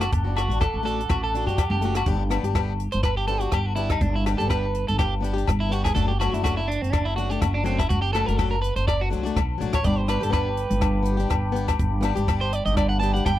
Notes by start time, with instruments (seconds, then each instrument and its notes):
Already playing: accordion F#5 A5 D6
0.01 clean electric guitar F#4, cross-stick, closed hi-hat, low agogo
0.12 upright bass F#1, muted clean electric guitar stroke, kick, closed hi-hat
0.24 steel-string acoustic guitar D4 F#4
0.37 clean electric guitar F#4, cross-stick, closed hi-hat, low agogo
0.48 upright bass A1, steel-string acoustic guitar F#4, closed hi-hat
0.53 steel-string acoustic guitar D4
0.61 clean electric guitar A4, kick, cross-stick, closed hi-hat, low agogo
0.74 upright bass A1
0.83 steel-string acoustic guitar A3 D4 F#4, clean electric guitar A4, closed hi-hat
1.00 closed hi-hat
1.09 upright bass A1, clean electric guitar F#4, kick, cross-stick, closed hi-hat, low agogo
1.24 clean electric guitar A4
1.35 steel-string acoustic guitar D4 F#4, closed hi-hat
1.46 upright bass F#2, steel-string acoustic guitar D4 F#4, clean electric guitar G4, closed hi-hat
1.58 kick, cross-stick, closed hi-hat, low agogo
1.70 upright bass F#1, clean electric guitar G4
1.81 steel-string acoustic guitar A3 D4 F#4, closed hi-hat
1.95 clean electric guitar F#4, cross-stick, closed hi-hat, low agogo
2.06 upright bass G1, steel-string acoustic guitar B3 D4 G4, kick, closed hi-hat
2.30 steel-string acoustic guitar B3 D4 G4, cross-stick, closed hi-hat, low agogo
2.43 upright bass G1, steel-string acoustic guitar G4, closed hi-hat
2.47 steel-string acoustic guitar D4
2.55 steel-string acoustic guitar B3 D4, kick, cross-stick, closed hi-hat, low agogo
2.59 steel-string acoustic guitar G4
2.80 closed hi-hat
2.92 upright bass G1, clean electric guitar C5, closed hi-hat
3.03 clean electric guitar B4, kick, cross-stick, closed hi-hat, low agogo
3.17 clean electric guitar G4
3.27 steel-string acoustic guitar B3 D4, clean electric guitar A4, closed hi-hat
3.31 steel-string acoustic guitar G4
3.40 steel-string acoustic guitar D4 G4, clean electric guitar F#4, closed hi-hat
3.52 upright bass G1, clean electric guitar G4, kick, cross-stick, closed hi-hat, low agogo
3.66 clean electric guitar F#4
3.76 steel-string acoustic guitar B3 D4 G4, clean electric guitar E4, closed hi-hat
3.90 clean electric guitar D#4, kick, cross-stick, closed hi-hat, low agogo
4.01 upright bass G1, clean electric guitar D4, kick, closed hi-hat
4.16 clean electric guitar E4
4.25 steel-string acoustic guitar B3 D4 G4, muted clean electric guitar stroke, cross-stick, closed hi-hat, low agogo
4.38 upright bass G1, steel-string acoustic guitar D4 G4, clean electric guitar A4, closed hi-hat
4.47 steel-string acoustic guitar B3 D4, clean electric guitar B4, kick, cross-stick, closed hi-hat, low agogo
4.51 steel-string acoustic guitar G4
4.74 closed hi-hat
4.88 upright bass G1, clean electric guitar A4, closed hi-hat
4.99 clean electric guitar G4, kick, cross-stick, closed hi-hat, low agogo
5.21 steel-string acoustic guitar B3 D4 G4, closed hi-hat
5.33 steel-string acoustic guitar D4 G4
5.38 closed hi-hat
5.47 upright bass G1, kick, cross-stick, closed hi-hat, low agogo
5.60 clean electric guitar E4
5.69 steel-string acoustic guitar B3 D4 G4, clean electric guitar F#4, closed hi-hat
5.84 clean electric guitar G#4, kick, cross-stick, closed hi-hat, low agogo
5.94 upright bass F#1, steel-string acoustic guitar F#3 A3 D4 F#4, clean electric guitar A4, kick, closed hi-hat
6.08 clean electric guitar G4
6.20 steel-string acoustic guitar F#3 A3 D4 F#4, clean electric guitar F#4, cross-stick, closed hi-hat, low agogo
6.32 upright bass F#1, steel-string acoustic guitar A3 D4 F#4, clean electric guitar E4, closed hi-hat
6.42 steel-string acoustic guitar F#3 A3 D4, clean electric guitar F#4, kick, cross-stick, closed hi-hat, low agogo
6.57 clean electric guitar E4
6.68 clean electric guitar D4, closed hi-hat
6.82 upright bass F#1, clean electric guitar C4, closed hi-hat
6.93 clean electric guitar D4, kick, cross-stick, closed hi-hat, low agogo
7.05 clean electric guitar E4
7.16 steel-string acoustic guitar F#3 A3 D4 F#4, clean electric guitar F#4, closed hi-hat
7.30 steel-string acoustic guitar A3 D4, clean electric guitar G4, closed hi-hat
7.41 upright bass F#1, clean electric guitar F#4, kick, cross-stick, closed hi-hat, low agogo
7.54 clean electric guitar D4
7.64 steel-string acoustic guitar F#3 A3 D4 F#4, clean electric guitar C4, closed hi-hat
7.78 clean electric guitar E4, kick, cross-stick, closed hi-hat, low agogo
7.89 upright bass F#1, clean electric guitar F#4, kick, closed hi-hat
8.02 clean electric guitar G4
8.13 steel-string acoustic guitar F#3 A3 D4 F#4, clean electric guitar A4, cross-stick, closed hi-hat, low agogo
8.26 upright bass F#1, steel-string acoustic guitar D4 F#4, clean electric guitar A#4, closed hi-hat
8.30 steel-string acoustic guitar A3
8.37 steel-string acoustic guitar F#3 A3 D4, clean electric guitar A4, kick, cross-stick, closed hi-hat, low agogo
8.41 steel-string acoustic guitar F#4
8.51 clean electric guitar A#4
8.62 clean electric guitar B4, closed hi-hat
8.76 upright bass F#1, clean electric guitar C5, closed hi-hat
8.88 clean electric guitar D5, kick, cross-stick, closed hi-hat, low agogo
9.01 clean electric guitar F#4
9.10 upright bass C2, steel-string acoustic guitar F#3 A3 D4 F#4, closed hi-hat
9.23 steel-string acoustic guitar A3 D4 F#4, closed hi-hat
9.36 upright bass B1, kick, cross-stick, closed hi-hat, low agogo
9.58 upright bass A1, steel-string acoustic guitar F#3 A3 D4, closed hi-hat
9.62 steel-string acoustic guitar F#4
9.73 clean electric guitar C#5, kick, cross-stick, closed hi-hat, low agogo
9.83 upright bass G1, steel-string acoustic guitar B3 D4 G4, clean electric guitar D5, accordion G5 B5 D6, kick, closed hi-hat
9.98 clean electric guitar C5
10.07 steel-string acoustic guitar B3 D4 G4, clean electric guitar B4, cross-stick, closed hi-hat, low agogo
10.21 upright bass G1, steel-string acoustic guitar D4 G4, clean electric guitar A4, closed hi-hat
10.30 steel-string acoustic guitar B3 D4 G4, clean electric guitar B4, kick, cross-stick, closed hi-hat, low agogo
10.57 closed hi-hat
10.70 upright bass G1, closed hi-hat
10.81 kick, cross-stick, closed hi-hat, low agogo
11.03 steel-string acoustic guitar B3 D4, closed hi-hat
11.07 steel-string acoustic guitar G4
11.17 steel-string acoustic guitar D4 G4, closed hi-hat
11.30 upright bass G1, kick, cross-stick, closed hi-hat, low agogo
11.52 steel-string acoustic guitar B3 D4 G4, closed hi-hat
11.68 kick, cross-stick, closed hi-hat, low agogo
11.79 upright bass G1, kick, closed hi-hat
12.01 steel-string acoustic guitar B3 D4 G4, cross-stick, closed hi-hat
12.05 low agogo
12.16 upright bass G1, steel-string acoustic guitar D4 G4, closed hi-hat
12.27 steel-string acoustic guitar B3 D4 G4, kick, cross-stick, closed hi-hat, low agogo
12.41 clean electric guitar C5
12.53 clean electric guitar D5, closed hi-hat
12.65 upright bass G1, clean electric guitar D#5, closed hi-hat
12.77 clean electric guitar D5, kick, cross-stick, closed hi-hat, low agogo
12.89 clean electric guitar F#5
13.00 steel-string acoustic guitar B3 D4 G4, clean electric guitar A5, closed hi-hat
13.14 steel-string acoustic guitar D4 G4, clean electric guitar F#5, closed hi-hat
13.26 upright bass G1, clean electric guitar G5, kick, cross-stick, closed hi-hat, low agogo